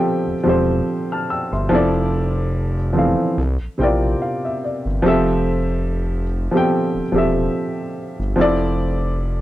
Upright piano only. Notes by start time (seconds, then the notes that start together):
Already playing: F3 C4 G4 A4 E5 G5
0.44 F3 C4 G4
0.48 A4 C5
1.12 A5 F6
1.30 G5 E6
1.53 E5 C6
1.69 F3 C4 E4
1.73 A4 D5
2.93 E3 F3 C4
2.97 A4 F5
3.78 C3 C4 E4 G5
3.82 A#4 D5
3.87 F4
4.22 F5
4.45 E5
4.64 D5
5.02 F3 C4 G4
5.07 A4 E5
6.51 F3 C4 G4
6.56 A4 G5
7.12 F3 C4 G4
7.16 A4 E5
8.36 F3 C4 E4
8.40 A4 D5